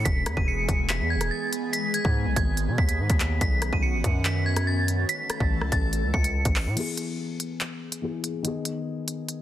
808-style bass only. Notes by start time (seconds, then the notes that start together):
0.05 E1
0.26 E2
0.37 E1
0.69 E1
1.00 E2
1.16 E1
2.05 G#2
2.26 B1
2.36 G#1
2.68 B2
2.78 D#2
2.99 G#2
3.10 D#2
3.41 B1
3.73 B1
3.94 A1
4.04 F#2
5.40 A1
5.61 C#2
5.72 A1
6.03 C#2
6.14 C#2
6.45 A1
6.66 A2